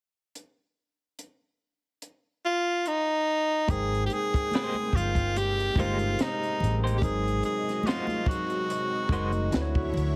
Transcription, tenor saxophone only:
2.46 2.89 F4 medium
2.87 3.72 D#4 loud
3.71 4.05 G#4 loud
4.06 4.15 G4 medium
4.13 4.98 G#4 loud
4.96 5.39 F4 loud
5.38 5.81 G4 loud
5.80 6.23 F4 medium
6.21 6.78 D#4 medium
6.97 7.05 G4 medium
7.04 7.45 G#4 loud
7.45 7.89 G#4 medium
7.88 8.30 F4 loud
8.29 9.95 F#4 medium

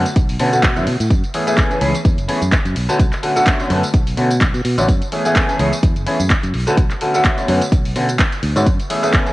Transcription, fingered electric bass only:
0.16 0.36 B1 loud
0.40 0.78 B2 medium
0.77 0.85 F#2 medium
0.87 0.98 B2 medium
1.00 1.09 A2 loud
1.10 1.22 F#2 loud
1.81 1.93 C#2 loud
2.05 2.16 E2 loud
2.18 2.27 F#1 medium
2.42 2.51 F#2 medium
2.65 2.74 F#2 loud
2.76 2.87 B1 loud
2.99 3.11 B1 loud
3.70 3.81 F#2 loud
3.94 4.14 B1 loud
4.18 4.43 B2 medium
4.41 4.52 B1 medium
4.54 4.63 B2 loud
4.65 4.76 B2 medium
4.78 4.87 A1 medium
4.88 5.00 F#2 loud
5.59 5.70 C#2 loud
5.83 5.94 E2 loud
5.96 6.05 F#1 medium
6.20 6.29 F#2 medium
6.43 6.52 F#2 loud
6.54 6.65 B1 loud
6.77 6.88 B1 loud
7.48 7.59 F#2 loud
7.72 7.92 B1 loud
7.96 8.16 B2 medium
8.43 8.54 D2 medium
8.56 8.65 G#2 loud

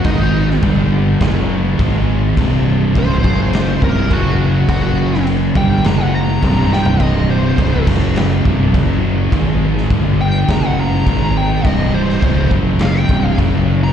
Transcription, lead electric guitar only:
0.05 0.61 D#4 loud
2.98 3.81 C5 loud
3.84 4.11 A#4 loud
4.13 4.68 F#4 loud
4.69 5.25 F#4 loud
5.57 5.84 G5 loud
5.87 6.02 A#5 medium
6.02 6.15 F#5 loud
6.15 6.71 A#5 medium
6.73 7.01 G5 medium
7.01 7.29 D#5 loud
7.30 7.86 C5 loud
10.21 10.49 G5 loud
10.51 10.66 A#5 medium
10.66 10.79 F#5 loud
10.80 11.35 A#5 medium
11.37 11.65 G5 loud
11.65 11.93 D#5 loud
11.94 12.50 C5 loud
12.83 12.95 F5 medium
12.96 13.26 G5 loud
13.26 13.38 F5 loud
13.84 13.93 A#5 loud

